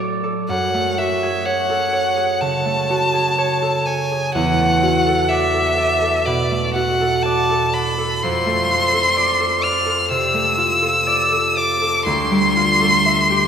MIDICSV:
0, 0, Header, 1, 3, 480
1, 0, Start_track
1, 0, Tempo, 986842
1, 241, Time_signature, 4, 2, 24, 8
1, 714, Tempo, 956938
1, 3114, Tempo, 986842
1, 4074, Tempo, 946372
1, 5514, Tempo, 988468
1, 6685, End_track
2, 0, Start_track
2, 0, Title_t, "Violin"
2, 0, Program_c, 0, 40
2, 237, Note_on_c, 0, 78, 58
2, 476, Note_on_c, 0, 76, 50
2, 483, Note_off_c, 0, 78, 0
2, 705, Note_on_c, 0, 78, 60
2, 712, Note_off_c, 0, 76, 0
2, 1185, Note_on_c, 0, 81, 62
2, 1192, Note_off_c, 0, 78, 0
2, 1914, Note_on_c, 0, 80, 55
2, 1922, Note_off_c, 0, 81, 0
2, 2151, Note_off_c, 0, 80, 0
2, 2154, Note_on_c, 0, 78, 66
2, 2631, Note_on_c, 0, 76, 66
2, 2638, Note_off_c, 0, 78, 0
2, 3115, Note_on_c, 0, 74, 58
2, 3122, Note_off_c, 0, 76, 0
2, 3348, Note_off_c, 0, 74, 0
2, 3351, Note_on_c, 0, 78, 59
2, 3586, Note_on_c, 0, 81, 71
2, 3594, Note_off_c, 0, 78, 0
2, 3834, Note_on_c, 0, 83, 64
2, 3842, Note_off_c, 0, 81, 0
2, 4072, Note_on_c, 0, 84, 79
2, 4079, Note_off_c, 0, 83, 0
2, 4787, Note_on_c, 0, 89, 65
2, 4794, Note_off_c, 0, 84, 0
2, 5024, Note_off_c, 0, 89, 0
2, 5028, Note_on_c, 0, 88, 75
2, 5757, Note_on_c, 0, 86, 67
2, 5765, Note_off_c, 0, 88, 0
2, 5988, Note_off_c, 0, 86, 0
2, 5991, Note_on_c, 0, 84, 82
2, 6685, Note_off_c, 0, 84, 0
2, 6685, End_track
3, 0, Start_track
3, 0, Title_t, "Harp"
3, 0, Program_c, 1, 46
3, 0, Note_on_c, 1, 45, 39
3, 0, Note_on_c, 1, 54, 33
3, 0, Note_on_c, 1, 57, 30
3, 0, Note_on_c, 1, 66, 35
3, 0, Note_on_c, 1, 69, 34
3, 0, Note_on_c, 1, 74, 36
3, 108, Note_off_c, 1, 69, 0
3, 114, Note_on_c, 1, 69, 35
3, 186, Note_off_c, 1, 45, 0
3, 239, Note_on_c, 1, 42, 43
3, 258, Note_off_c, 1, 74, 0
3, 354, Note_off_c, 1, 57, 0
3, 360, Note_on_c, 1, 57, 35
3, 473, Note_off_c, 1, 66, 0
3, 478, Note_on_c, 1, 66, 34
3, 597, Note_on_c, 1, 68, 36
3, 708, Note_on_c, 1, 73, 38
3, 823, Note_off_c, 1, 69, 0
3, 829, Note_on_c, 1, 69, 39
3, 940, Note_off_c, 1, 73, 0
3, 946, Note_on_c, 1, 73, 36
3, 1059, Note_off_c, 1, 68, 0
3, 1065, Note_on_c, 1, 68, 34
3, 1163, Note_off_c, 1, 54, 0
3, 1187, Note_on_c, 1, 49, 35
3, 1304, Note_off_c, 1, 57, 0
3, 1310, Note_on_c, 1, 57, 34
3, 1427, Note_off_c, 1, 66, 0
3, 1433, Note_on_c, 1, 66, 34
3, 1544, Note_off_c, 1, 68, 0
3, 1550, Note_on_c, 1, 68, 37
3, 1669, Note_off_c, 1, 73, 0
3, 1675, Note_on_c, 1, 73, 36
3, 1789, Note_off_c, 1, 69, 0
3, 1795, Note_on_c, 1, 69, 38
3, 1910, Note_off_c, 1, 73, 0
3, 1916, Note_on_c, 1, 73, 38
3, 2038, Note_off_c, 1, 68, 0
3, 2044, Note_on_c, 1, 68, 39
3, 2160, Note_on_c, 1, 40, 47
3, 2180, Note_off_c, 1, 49, 0
3, 2180, Note_off_c, 1, 73, 0
3, 2181, Note_off_c, 1, 42, 0
3, 2183, Note_off_c, 1, 68, 0
3, 2275, Note_off_c, 1, 57, 0
3, 2281, Note_on_c, 1, 57, 34
3, 2393, Note_off_c, 1, 66, 0
3, 2399, Note_on_c, 1, 66, 35
3, 2511, Note_off_c, 1, 69, 0
3, 2517, Note_on_c, 1, 69, 38
3, 2638, Note_on_c, 1, 74, 38
3, 2751, Note_off_c, 1, 69, 0
3, 2758, Note_on_c, 1, 69, 38
3, 2871, Note_off_c, 1, 74, 0
3, 2877, Note_on_c, 1, 74, 38
3, 2989, Note_off_c, 1, 69, 0
3, 2995, Note_on_c, 1, 69, 38
3, 3119, Note_on_c, 1, 47, 35
3, 3235, Note_off_c, 1, 57, 0
3, 3241, Note_on_c, 1, 57, 34
3, 3352, Note_off_c, 1, 66, 0
3, 3358, Note_on_c, 1, 66, 36
3, 3475, Note_off_c, 1, 69, 0
3, 3481, Note_on_c, 1, 69, 35
3, 3595, Note_off_c, 1, 74, 0
3, 3601, Note_on_c, 1, 74, 41
3, 3713, Note_off_c, 1, 69, 0
3, 3719, Note_on_c, 1, 69, 42
3, 3829, Note_off_c, 1, 74, 0
3, 3835, Note_on_c, 1, 74, 40
3, 3949, Note_off_c, 1, 69, 0
3, 3955, Note_on_c, 1, 69, 42
3, 4078, Note_on_c, 1, 41, 47
3, 4086, Note_off_c, 1, 40, 0
3, 4095, Note_off_c, 1, 66, 0
3, 4096, Note_off_c, 1, 47, 0
3, 4187, Note_off_c, 1, 57, 0
3, 4194, Note_on_c, 1, 57, 40
3, 4316, Note_on_c, 1, 65, 36
3, 4427, Note_off_c, 1, 69, 0
3, 4433, Note_on_c, 1, 69, 40
3, 4545, Note_off_c, 1, 74, 0
3, 4551, Note_on_c, 1, 74, 42
3, 4664, Note_off_c, 1, 69, 0
3, 4670, Note_on_c, 1, 69, 43
3, 4782, Note_off_c, 1, 74, 0
3, 4788, Note_on_c, 1, 74, 42
3, 4898, Note_off_c, 1, 69, 0
3, 4904, Note_on_c, 1, 69, 39
3, 5026, Note_on_c, 1, 48, 40
3, 5139, Note_off_c, 1, 57, 0
3, 5146, Note_on_c, 1, 57, 39
3, 5259, Note_off_c, 1, 65, 0
3, 5265, Note_on_c, 1, 65, 37
3, 5386, Note_off_c, 1, 69, 0
3, 5392, Note_on_c, 1, 69, 41
3, 5509, Note_off_c, 1, 74, 0
3, 5515, Note_on_c, 1, 74, 40
3, 5630, Note_off_c, 1, 69, 0
3, 5636, Note_on_c, 1, 69, 41
3, 5753, Note_off_c, 1, 74, 0
3, 5759, Note_on_c, 1, 74, 41
3, 5870, Note_off_c, 1, 69, 0
3, 5876, Note_on_c, 1, 69, 41
3, 5997, Note_on_c, 1, 38, 54
3, 6014, Note_off_c, 1, 48, 0
3, 6016, Note_off_c, 1, 41, 0
3, 6116, Note_on_c, 1, 55, 37
3, 6237, Note_off_c, 1, 65, 0
3, 6242, Note_on_c, 1, 65, 42
3, 6355, Note_off_c, 1, 69, 0
3, 6361, Note_on_c, 1, 69, 40
3, 6482, Note_on_c, 1, 76, 43
3, 6601, Note_on_c, 1, 67, 42
3, 6685, Note_off_c, 1, 38, 0
3, 6685, Note_off_c, 1, 55, 0
3, 6685, Note_off_c, 1, 57, 0
3, 6685, Note_off_c, 1, 65, 0
3, 6685, Note_off_c, 1, 67, 0
3, 6685, Note_off_c, 1, 69, 0
3, 6685, Note_off_c, 1, 74, 0
3, 6685, Note_off_c, 1, 76, 0
3, 6685, End_track
0, 0, End_of_file